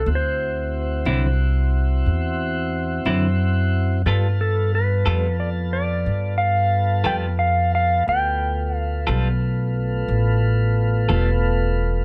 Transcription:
0.06 D2 C4 E4 F#4
0.15 C5
1.05 C2 D3 F#3 C4 E4
2.06 E2
3.05 F#2 D3 F#3 C4 E4
4.06 G2 G3 B3 F4 A4
4.41 A4
4.75 B4
5.06 F2 G3 B3 F4 A4
5.40 D5
5.73 D5
6.06 G2
6.38 F5
7.04 F2 G3 B3 F4 A4 G5
7.39 F5
7.75 F5
8.07 D2 A3 B3 F4 G5
8.76 F5
9.07 B1 G3 B3 F4 A4
10.08 A1
11.09 E1 G3 B3 F4 A4

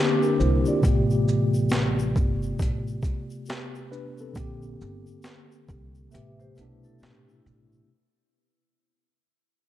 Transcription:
Already playing: D3 A#3 C4 D4 G4
0.23 D4 A#4, shaker
0.40 C2 E4 C5, shaker
0.65 F4 D5, shaker
0.81 A1 C3 A3, kick, closed hi-hat, shaker
0.86 B3 G4
1.10 shaker
1.28 shaker
1.54 shaker
1.69 snare, closed hi-hat, shaker
1.99 shaker
2.16 G1, kick, shaker
2.43 shaker
2.59 A1, kick, closed hi-hat, shaker
2.87 shaker
3.02 kick, closed hi-hat, shaker
3.04 shaker
3.30 shaker
3.46 G4, shaker
3.50 B3, snare, closed hi-hat
3.75 shaker
3.92 D4 B4, shaker
4.18 C4 A4, shaker
4.33 A#1 D3 A#3, kick, closed hi-hat, shaker
4.38 C4 G4
4.62 shaker
4.81 G1, shaker
5.06 shaker
5.22 snare, closed hi-hat, shaker
5.52 shaker
5.68 C2, kick, shaker
5.95 shaker
6.09 C3 A3 B4 E5, shaker
6.13 A1 B3 G4, closed hi-hat
6.40 G4 C5, shaker
6.54 B2 A3 E4 B4, closed hi-hat, shaker
6.58 B1 B3 D4, shaker
6.84 E4 A4, shaker
6.99 A2 C4 G4, shaker
7.03 snare, closed hi-hat
7.28 B3 E4, shaker
7.46 A1, shaker
7.72 shaker

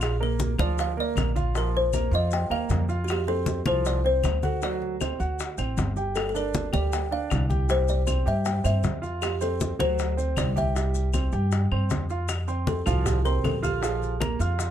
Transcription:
Already playing: A#1 F4 F5
0.01 G#4, high bongo, high conga, claves, maracas
0.20 A#3 A#4, high conga
0.39 high bongo, high conga, maracas
0.58 D2 F3 F4 D5, high conga, claves, maracas
0.78 F5, high bongo, high conga, maracas
0.97 A#3 A#4 D5, high conga
1.16 A#1, high bongo, low bongo, high conga, claves, maracas
1.36 F4 F5, high conga, maracas
1.55 F3 F4 A#4, high bongo, high conga, maracas
1.74 C5, high bongo, high conga
1.93 A#3 A#4, high bongo, high conga, claves, maracas
2.11 F2 F4 D#5 F5, high conga, maracas
2.31 G5, high bongo, high conga, maracas
2.50 D#2 A#3 A#4 F5, high bongo, high conga, claves
2.69 F2, high bongo, low bongo, high conga, maracas
2.89 F4 F5, high bongo, high conga, maracas
3.04 F#4, high conga, claves, maracas
3.10 G4, high bongo
3.27 C4 A4 C5, high conga
3.46 high bongo, high conga, maracas
3.66 C2 F3 F4 C5, high conga, claves, maracas
3.85 D5, high bongo, high conga, maracas
4.04 C4 C5, high conga
4.24 D2, high bongo, low bongo, high conga, claves, maracas
4.43 F#4 A4 F#5, high conga, maracas
4.62 F#3 F#4 D5, high bongo, high conga, maracas
4.82 high bongo, high conga
5.01 C4 C5, high bongo, high conga, claves, maracas
5.19 D2 F#4 F#5, high conga, maracas
5.39 high bongo, high conga, maracas
5.58 A1 C4 C5, high bongo, high conga, claves, maracas
5.77 G1, high bongo, low bongo, high conga, maracas
5.97 G4 G5, high bongo, high conga, maracas
6.15 A4, high bongo, high conga, claves, maracas
6.29 A4
6.34 D4 A#4 D5, high conga, maracas
6.54 high bongo, high conga, maracas
6.72 D2 G3 G4 D5, high conga, claves, maracas
6.92 G5, high bongo, high conga, maracas
7.11 D4 D5 F5, high conga
7.30 C2, high bongo, low bongo, high conga, claves, maracas
7.50 G4 G5, high conga, maracas
7.69 G3 G4 C5, high bongo, high conga, maracas
7.88 D5, high bongo, high conga, maracas
8.07 C4 C5, high bongo, high conga, claves, maracas
8.26 G2 G4 E5 G5, high conga, maracas
8.45 G5, high bongo, high conga, maracas
8.64 G2 C4 C5 E5, high bongo, high conga, claves, maracas
8.83 F2, high bongo, low bongo, high conga, maracas
9.02 F4 F5, high bongo, high conga, maracas
9.22 G4, high bongo, high conga, claves, maracas
9.41 C4 A4 C5, high conga, maracas
9.60 high bongo, high conga, maracas
9.79 D2 F#3 F#4 C5, high conga, claves, maracas
9.99 high bongo, high conga, maracas
10.17 C4 C5, high conga, maracas
10.37 C2 D5, high bongo, low bongo, high conga, claves, maracas
10.56 G4 E5 G5, high conga, maracas
10.75 G3 G4, high bongo, high conga, maracas
10.94 high bongo, high conga, maracas
11.13 C4 C5, high bongo, high conga, claves, maracas
11.32 G2 G4 G5, high conga, maracas
11.52 high bongo, high conga, maracas
11.71 G2 C4 C5, high bongo, high conga, claves
11.90 F2, high bongo, low bongo, high conga, maracas
12.10 F4 F5, high bongo, high conga, maracas
12.29 high bongo, high conga, claves, maracas
12.48 C4 C5 C6, high conga, maracas
12.67 A4, high bongo, high conga, maracas
12.86 C2 F3 F4 F#4 F5, high bongo, high conga, low conga, claves, maracas
13.06 G4, high bongo, high conga, low conga, maracas
13.25 C4 A#4 C5 C6, high conga, maracas
13.44 A#1 A4, high bongo, low bongo, high conga, claves, maracas
13.63 F4 G4 F5 F6, high bongo, high conga, maracas
13.82 F3 F4 G#4 F5, high bongo, high conga, maracas
14.02 high conga, maracas
14.20 A#3 A#4 A#5, high bongo, high conga, claves, maracas
14.39 F2 F4 F5 F6, high bongo, high conga, maracas
14.59 high bongo, high conga, maracas

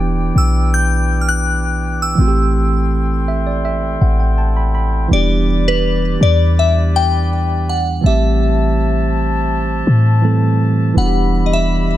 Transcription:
Already playing: E1 E3 B3 D4 E4 G4 B4 D5 G5
0.35 B1 E6
0.74 G6
1.21 F6
1.29 F#6
2.02 E6
2.15 A1 E3 A3 C4 A4 C5
2.21 F#4
2.28 G4
3.28 E5
3.47 D5
3.65 E5
4.01 A1 F#5
4.20 G5
4.38 A5
4.57 B5
4.75 B5
5.08 E1 E3 G3 B3 E4 G4 B4 D5
5.13 D4 G4 D5
5.68 B4
6.21 E2 D5
6.59 E5
6.96 G5
7.69 F#5
8.01 A1 E3 G3 A3 G4 C5 E5 A5
8.06 C4 G4 E5
9.87 A2
10.22 E3 G3 A3 C4 A4
10.94 E1 E3 G3 B3 G4 D5 E5 F#5 B5
10.98 D4 F#4
11.06 G4
11.46 D#5
11.53 E5

